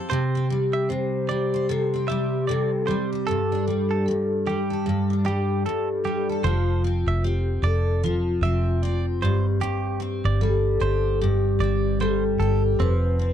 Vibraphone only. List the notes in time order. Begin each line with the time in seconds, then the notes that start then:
0.09 G4
0.89 C5
1.69 A4
2.09 G4
2.49 A4
2.87 G4
3.27 A4
4.06 A4
4.47 G4
5.66 A4
6.45 F4
7.24 G4
7.65 A4
8.04 F4
9.23 G4
10.41 A4
11.22 G4
12.01 A4
12.80 B4